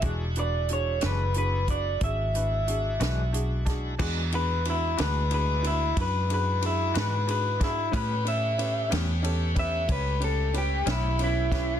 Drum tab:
CC |------------|x-----------|------------|
RD |------------|-xxxxxxxxxxx|xxxxxxxxxxxx|
HH |xxxxxxxxxxxx|------------|------------|
SD |---o-----o-o|---o-----o-o|---o-----o-o|
BD |o----oo----o|o-----o----o|o----oo----o|